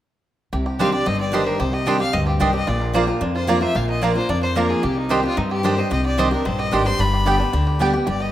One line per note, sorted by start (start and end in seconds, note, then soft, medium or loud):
0.53 0.95 C2 medium
0.53 1.04 C3 medium
0.53 0.65 G4 medium
0.66 0.92 G4 medium
0.79 0.92 D#3 medium
0.79 0.93 G3 medium
0.79 0.89 D4 medium
0.79 0.93 D4 medium
0.79 0.89 G4 medium
0.79 0.91 G4 loud
0.79 1.17 C5 medium
0.79 0.89 D#5 medium
0.79 0.92 F5 medium
0.79 0.89 C6 loud
0.92 1.06 D4 medium
0.92 1.05 G4 medium
0.92 1.19 G4 medium
0.92 1.08 D5 medium
1.06 1.49 G1 medium
1.06 1.57 G2 medium
1.06 1.44 C4 medium
1.06 1.20 D#5 medium
1.20 1.32 G4 medium
1.20 1.35 D5 medium
1.32 1.58 D#3 medium
1.32 1.59 G3 medium
1.32 1.42 D4 medium
1.32 1.59 D4 medium
1.32 1.59 G4 medium
1.32 1.42 G4 loud
1.32 1.59 G4 medium
1.32 1.48 C5 medium
1.32 1.43 D#5 loud
1.32 1.43 C6 loud
1.47 1.62 A#4 medium
1.47 1.84 C5 medium
1.60 2.03 C2 medium
1.60 2.11 C3 medium
1.60 1.72 G4 medium
1.60 1.75 C5 medium
1.73 1.99 G4 medium
1.73 1.88 D#5 medium
1.86 1.99 D#3 medium
1.86 2.00 G3 medium
1.86 2.12 C4 medium
1.86 1.96 D4 medium
1.86 2.00 D4 loud
1.86 1.96 G4 medium
1.86 1.98 G4 loud
1.86 1.96 D#5 loud
1.86 1.99 G5 medium
1.86 1.96 C6 loud
2.00 2.14 D4 soft
2.00 2.13 G4 medium
2.00 2.25 G4 medium
2.00 2.15 F5 loud
2.13 2.37 D2 medium
2.13 2.65 G2 medium
2.13 2.51 C4 medium
2.13 2.27 D#5 medium
2.27 2.39 G4 medium
2.27 2.42 G4 soft
2.40 2.63 C2 medium
2.40 2.53 D#3 medium
2.40 2.53 G3 loud
2.40 2.50 D4 loud
2.40 2.54 D4 medium
2.40 2.68 G4 medium
2.40 2.50 G4 loud
2.40 2.52 G4 medium
2.40 2.54 C5 medium
2.40 2.50 D#5 loud
2.40 2.50 C6 loud
2.53 2.68 C4 medium
2.53 2.68 D4 soft
2.53 2.66 G4 medium
2.53 2.70 D#5 loud
2.67 3.10 A#1 medium
2.67 3.18 A#2 medium
2.67 3.05 F4 medium
2.67 2.95 D5 medium
2.81 3.07 A#4 medium
2.93 3.07 F3 medium
2.93 3.03 A#3 medium
2.93 3.07 A#3 medium
2.93 3.08 D4 medium
2.93 3.04 F4 medium
2.93 3.06 F4 medium
2.93 3.32 C5 medium
2.93 3.04 D5 medium
2.93 3.04 A#5 loud
3.07 3.21 D4 soft
3.07 3.20 F4 medium
3.07 3.46 A#4 medium
3.21 3.72 F2 loud
3.21 3.64 F2 medium
3.21 3.65 D4 medium
3.36 3.73 F4 medium
3.36 3.51 C5 medium
3.47 3.61 F3 medium
3.47 3.57 A#3 medium
3.47 3.61 A#3 medium
3.47 3.62 D4 medium
3.47 3.57 F4 medium
3.47 3.60 F4 loud
3.47 3.86 A#4 medium
3.47 3.58 D5 loud
3.47 3.62 D5 medium
3.47 3.58 A#5 loud
3.61 3.75 D4 soft
3.61 3.74 F4 medium
3.61 4.00 C5 medium
3.61 3.77 E5 medium
3.75 4.18 A#1 medium
3.75 4.26 A#2 medium
3.75 4.13 F4 medium
3.75 3.89 F5 medium
3.89 4.15 A#4 medium
3.89 4.04 D#5 medium
4.01 4.15 F3 medium
4.01 4.11 A#3 loud
4.01 4.15 A#3 medium
4.01 4.29 D4 medium
4.01 4.16 D4 medium
4.01 4.12 F4 loud
4.01 4.14 F4 medium
4.01 4.15 D5 medium
4.01 4.12 D5 loud
4.01 4.12 A#5 loud
4.15 4.30 D4 soft
4.15 4.28 F4 medium
4.15 4.54 A#4 medium
4.15 4.31 C5 medium
4.29 4.80 F2 medium
4.29 4.72 F2 medium
4.29 5.13 D4 medium
4.29 4.42 D5 medium
4.43 4.58 C5 medium
4.43 4.81 C5 medium
4.55 4.81 F3 medium
4.55 4.65 A#3 medium
4.55 4.82 A#3 medium
4.55 4.82 D4 medium
4.55 4.65 F4 medium
4.55 4.82 F4 medium
4.55 4.71 A#4 medium
4.55 4.83 A#4 medium
4.55 4.66 D5 loud
4.55 4.66 A#5 medium
4.70 4.83 F4 medium
4.70 4.85 G#4 medium
4.83 5.26 C2 medium
4.83 5.34 C3 medium
4.83 5.24 G4 medium
4.83 4.99 G4 medium
4.97 5.13 D#4 medium
5.09 5.23 D#3 medium
5.09 5.23 G3 medium
5.09 5.19 D4 medium
5.09 5.24 D4 medium
5.09 5.19 G4 loud
5.09 5.22 G4 medium
5.09 5.48 C5 medium
5.09 5.20 D#5 medium
5.09 5.20 C6 loud
5.23 5.37 D4 medium
5.23 5.39 F4 loud
5.23 5.36 G4 medium
5.23 5.51 G4 medium
5.37 5.88 G2 loud
5.37 5.80 G2 medium
5.37 5.75 C4 medium
5.37 5.51 D#4 medium
5.51 5.64 G4 medium
5.51 5.66 G4 medium
5.63 5.77 D#3 medium
5.63 5.77 G3 medium
5.63 5.73 D4 medium
5.63 5.77 D4 medium
5.63 5.91 G4 medium
5.63 5.74 G4 medium
5.63 5.76 G4 loud
5.63 5.81 C5 medium
5.63 5.74 D#5 loud
5.63 5.74 C6 loud
5.77 5.92 D4 soft
5.77 5.90 G4 medium
5.77 6.16 C5 medium
5.77 5.91 D#5 medium
5.91 6.34 C2 medium
5.91 6.42 C3 medium
5.91 6.05 G4 medium
5.91 6.04 D#5 medium
6.05 6.32 G4 medium
6.05 6.20 D5 medium
6.18 6.31 D#3 medium
6.18 6.31 G3 medium
6.18 6.27 D4 medium
6.18 6.32 D4 loud
6.18 6.27 G4 medium
6.18 6.30 G4 loud
6.18 6.56 C5 medium
6.18 6.32 C5 medium
6.18 6.28 D#5 loud
6.18 6.28 C6 loud
6.31 6.46 D4 medium
6.31 6.44 G4 medium
6.31 6.59 G4 medium
6.31 6.47 A#4 medium
6.45 6.69 A#1 medium
6.45 6.97 G2 medium
6.45 6.83 C4 medium
6.45 6.60 C5 medium
6.59 6.73 G4 medium
6.59 6.74 D#5 medium
6.71 6.95 G#1 medium
6.71 6.85 D#3 medium
6.71 6.85 G3 loud
6.71 6.81 D4 medium
6.71 6.86 D4 medium
6.71 6.82 G4 medium
6.71 7.13 G4 medium
6.71 6.84 G4 medium
6.71 6.82 D#5 loud
6.71 6.88 G5 medium
6.71 6.82 C6 loud
6.85 7.00 D4 soft
6.85 6.98 G4 medium
6.85 7.00 C5 medium
6.85 7.02 C6 loud
6.99 7.42 G1 medium
6.99 7.51 G2 medium
6.99 7.39 D4 medium
6.99 7.81 B5 loud
7.13 7.26 G4 medium
7.26 7.39 D3 medium
7.26 7.40 G3 medium
7.26 7.35 B3 loud
7.26 7.40 B3 medium
7.26 7.53 G4 medium
7.26 7.36 G4 medium
7.26 7.38 G4 medium
7.26 7.36 D5 loud
7.26 7.36 G5 loud
7.39 7.54 B3 medium
7.39 7.80 D4 medium
7.39 7.53 G4 medium
7.53 7.96 D2 medium
7.53 7.78 D3 medium
7.53 7.67 G4 medium
7.67 7.93 G4 medium
7.79 7.93 D3 medium
7.79 7.93 G3 medium
7.79 7.90 B3 medium
7.79 7.94 B3 loud
7.79 8.32 D4 medium
7.79 7.90 G4 medium
7.79 7.92 G4 medium
7.79 7.90 D5 medium
7.79 7.90 G5 loud
7.94 8.08 B3 soft
7.94 8.07 G4 medium
8.07 8.32 G1 medium
8.07 8.32 G2 medium
8.07 8.20 G4 medium
8.07 8.23 D5 medium
8.20 8.32 G4 medium
8.20 8.32 D#5 medium